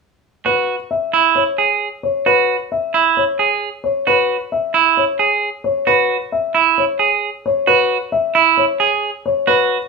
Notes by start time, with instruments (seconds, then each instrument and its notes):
0.46 clean electric guitar F#4, grand piano B4
0.91 grand piano E5
1.13 clean electric guitar E4
1.35 grand piano C#5
1.58 clean electric guitar G#4
2.03 grand piano C#5
2.26 clean electric guitar F#4, grand piano B4
2.72 grand piano E5
2.94 clean electric guitar E4
3.17 grand piano C#5
3.39 clean electric guitar G#4
3.84 grand piano C#5
4.07 clean electric guitar F#4, grand piano B4
4.52 grand piano E5
4.74 clean electric guitar E4
4.97 grand piano C#5
5.19 clean electric guitar G#4
5.64 grand piano C#5
5.87 clean electric guitar F#4, grand piano B4
6.32 grand piano E5
6.55 clean electric guitar E4
6.78 grand piano C#5
6.99 clean electric guitar G#4
7.46 grand piano C#5
7.67 clean electric guitar F#4, grand piano B4
8.12 grand piano E5
8.35 clean electric guitar E4
8.57 grand piano C#5
8.80 clean electric guitar G#4
9.26 grand piano C#5
9.47 clean electric guitar F#4, grand piano B4